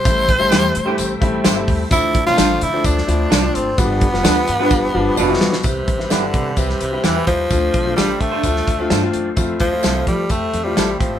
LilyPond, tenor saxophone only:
\new Staff \with { instrumentName = "Tenor saxophone" } { \clef bass \time 4/4 \key c \major \tempo 4 = 129 c''2~ c''8 r4. | e'8. f'8. e'8 d'4. c'8 | b2. b,4 | c4 d4 c4 e8 f8~ |
f4 g8 a2 r8 | r8 f4 g8 a8. g8. f8 | }